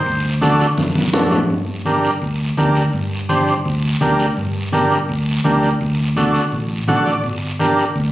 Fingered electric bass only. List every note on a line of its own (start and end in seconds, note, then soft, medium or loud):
0.06 0.63 D2 loud
0.78 1.06 F#2 loud
1.14 1.42 F#2 loud
1.50 2.07 G2 loud
2.22 2.50 D2 medium
2.58 2.86 D2 medium
2.93 3.51 G2 loud
3.66 3.94 D2 medium
4.02 4.30 D2 medium
4.38 4.95 G2 loud
5.09 5.38 D2 medium
5.45 5.74 D2 medium
5.81 6.38 D2 loud
6.52 6.81 A1 medium
6.88 7.17 A1 medium
7.24 7.81 G1 medium
7.95 8.12 D2 medium